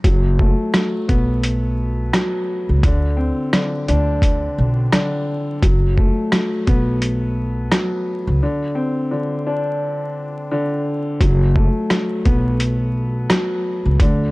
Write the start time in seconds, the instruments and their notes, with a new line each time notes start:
0.04 upright bass F#1, upright piano F#3, kick, closed hi-hat
0.39 upright piano A3, kick
0.74 upright piano F#3, cross-stick, snare, closed hi-hat
1.09 upright bass B1, upright piano B3, kick, closed hi-hat
1.44 closed hi-hat
2.13 upright piano F#3, cross-stick, snare, closed hi-hat
2.69 upright bass C#2
2.83 upright bass D2, upright piano D3, kick, closed hi-hat
3.17 upright piano C4
3.53 upright piano D3, cross-stick, snare, closed hi-hat
3.88 upright bass D2, upright piano D4, closed hi-hat
4.22 kick, closed hi-hat
4.58 upright bass B1
4.92 upright piano D3, cross-stick, snare, closed hi-hat
5.62 upright bass F#1, upright piano F#3, kick, closed hi-hat
5.98 upright piano A3, kick
6.32 upright piano F#3, cross-stick, snare, closed hi-hat
6.67 upright bass B1, upright piano B3, kick, closed hi-hat
7.02 closed hi-hat
7.72 upright piano F#3, cross-stick, snare, closed hi-hat
8.27 upright bass C#2
8.43 upright piano D3
8.75 upright piano C4
9.11 upright piano D3
9.47 upright piano D4
10.51 upright piano D3
11.20 upright bass F#1, upright piano F#3, kick, closed hi-hat
11.56 upright piano A3, kick
11.90 upright piano F#3, cross-stick, snare, closed hi-hat
12.25 upright bass B1, upright piano B3, kick, closed hi-hat
12.60 closed hi-hat
13.30 upright piano F#3, cross-stick, snare, closed hi-hat
13.85 upright bass C#2
14.00 upright bass D2, upright piano D3, kick, closed hi-hat